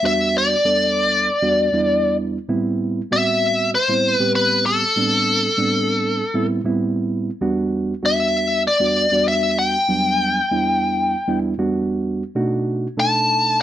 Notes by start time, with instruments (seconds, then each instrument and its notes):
0.03 reed electric piano E2 G3 B3 D4 F#4, lead electric guitar E5
0.38 lead electric guitar D5
0.65 reed electric piano E2 G3 B3 D4 A4
1.42 reed electric piano E2 G3 B3 D4 F#4
1.73 reed electric piano E2 G3 B3 D4 E4
2.48 reed electric piano A2 G3 B3 C4 E4
3.11 reed electric piano A2 G3 B3 C4 F#4, lead electric guitar E5
3.75 lead electric guitar C5
3.89 reed electric piano A2 G3 B3 C4 E4
4.15 lead electric guitar B4
4.19 reed electric piano A2 G3 B3 C4 G4
4.36 lead electric guitar B4
4.66 lead electric guitar A4
4.96 reed electric piano A2 G3 B3 C4 D4
5.58 reed electric piano A2 G3 B3 C4 D4
6.34 reed electric piano A2 G3 B3 C4 E4
6.65 reed electric piano A2 G3 B3 C4 E4
7.41 reed electric piano E2 G3 B3 D4 F#4
8.02 reed electric piano E2 G3 B3 D4 F#4, lead electric guitar E5
8.68 lead electric guitar D5
8.80 reed electric piano E2 G3 B3 D4 F#4
9.11 reed electric piano E2 G3 B3 D4 F#4
9.28 lead electric guitar E5
9.59 lead electric guitar G5
9.88 reed electric piano E2 F#3 G3 B3 D4
10.51 reed electric piano E2 G3 B3 D4 E4
11.28 reed electric piano E2 G3 B3 D4 E4
11.58 reed electric piano E2 G3 B3 D4 F#4
12.35 reed electric piano B2 A3 D4 D#4 F#4
12.97 reed electric piano B2 A3 D4 D#4 A4, lead electric guitar A5